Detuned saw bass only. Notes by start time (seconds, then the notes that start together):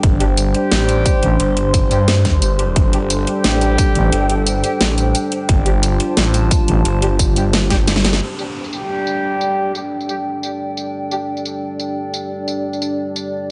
0.03 G1
0.72 A1
1.40 G1
1.91 G2
2.42 G1
2.76 G1
3.44 A1
4.12 G1
4.81 A1
5.49 G1
6.17 A1
6.85 G1
7.36 G1